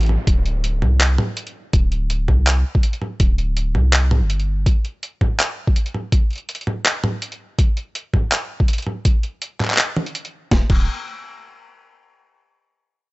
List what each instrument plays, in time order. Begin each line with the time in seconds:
Already playing: 808-style bass A1, downlifter
0.01 closed hi-hat
0.03 closed hi-hat
0.09 mid tom
0.27 808-style bass D1, kick, closed hi-hat
0.46 closed hi-hat
0.64 closed hi-hat
0.82 808-style bass C2, mid tom
1.01 clap, closed hi-hat
1.18 mid tom
1.37 closed hi-hat
1.47 closed hi-hat
1.73 808-style bass D1, kick, closed hi-hat
1.92 closed hi-hat
2.10 closed hi-hat
2.28 808-style bass C2, kick, mid tom
2.47 clap, closed hi-hat
2.75 kick
2.83 closed hi-hat
2.93 closed hi-hat
3.02 mid tom
3.20 808-style bass D1, kick, closed hi-hat
3.38 closed hi-hat
3.57 closed hi-hat
3.75 808-style bass C2, mid tom
3.93 clap, closed hi-hat
4.11 mid tom
4.21 808-style bass G1
4.30 closed hi-hat
4.40 closed hi-hat
4.66 kick, closed hi-hat
4.85 closed hi-hat
5.03 closed hi-hat
5.21 kick, mid tom
5.40 clap, closed hi-hat
5.67 kick
5.76 closed hi-hat
5.86 closed hi-hat
5.94 mid tom
6.12 kick, closed hi-hat
6.31 closed hi-hat
6.33 closed hi-hat
6.36 closed hi-hat
6.38 closed hi-hat
6.49 closed hi-hat
6.55 closed hi-hat
6.61 closed hi-hat
6.67 mid tom
6.85 clap, closed hi-hat
7.04 mid tom
7.22 closed hi-hat
7.32 closed hi-hat
7.59 kick, closed hi-hat
7.77 closed hi-hat
7.95 closed hi-hat
8.14 kick, mid tom
8.32 clap, closed hi-hat
8.60 kick
8.68 closed hi-hat
8.73 closed hi-hat
8.78 closed hi-hat
8.82 closed hi-hat
8.87 mid tom
9.05 kick, closed hi-hat
9.23 closed hi-hat
9.42 closed hi-hat
9.60 clap, mid tom
9.65 clap
9.70 clap
9.74 clap
9.78 clap, closed hi-hat
9.97 mid tom
10.06 closed hi-hat
10.15 closed hi-hat
10.25 closed hi-hat
10.51 808-style bass D1, kick, snare
10.70 808-style bass D1, kick, crash